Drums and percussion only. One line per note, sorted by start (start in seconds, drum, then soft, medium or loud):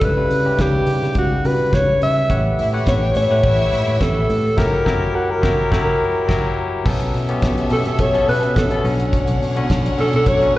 0.01 kick loud
0.01 closed hi-hat medium
0.31 open hi-hat medium
0.58 kick loud
0.58 snare medium
0.58 closed hi-hat medium
0.86 open hi-hat medium
1.03 snare soft
1.15 kick loud
1.15 closed hi-hat medium
1.45 open hi-hat medium
1.73 kick loud
1.73 snare medium
1.73 closed hi-hat medium
2.02 open hi-hat medium
2.30 kick loud
2.30 closed hi-hat medium
2.59 open hi-hat medium
2.86 kick loud
2.86 snare loud
2.86 closed hi-hat medium
3.15 open hi-hat medium
3.43 kick loud
3.43 closed hi-hat medium
3.73 open hi-hat medium
4.01 kick loud
4.01 snare medium
4.01 closed hi-hat medium
4.30 open hi-hat medium
4.58 kick loud
4.58 snare loud
4.58 crash medium
4.86 kick medium
4.86 snare loud
5.43 kick loud
5.43 snare loud
5.72 kick loud
5.72 snare loud
6.29 kick loud
6.29 snare medium
6.29 crash medium
6.86 kick loud
6.86 crash loud
7.00 closed hi-hat medium
7.14 open hi-hat medium
7.29 closed hi-hat medium
7.42 kick loud
7.42 snare loud
7.42 closed hi-hat medium
7.58 closed hi-hat soft
7.70 open hi-hat medium
7.85 snare soft
7.85 closed hi-hat soft
7.98 kick loud
7.98 closed hi-hat medium
8.14 closed hi-hat soft
8.29 open hi-hat medium
8.43 closed hi-hat soft
8.56 kick loud
8.56 snare loud
8.56 closed hi-hat medium
8.71 closed hi-hat soft
8.85 open hi-hat medium
9.00 closed hi-hat soft
9.13 kick loud
9.13 closed hi-hat medium
9.27 closed hi-hat medium
9.42 open hi-hat medium
9.56 closed hi-hat soft
9.70 kick loud
9.70 snare loud
9.70 closed hi-hat medium
9.86 closed hi-hat soft
9.98 open hi-hat medium
10.13 closed hi-hat soft
10.26 kick loud
10.26 closed hi-hat medium
10.42 closed hi-hat soft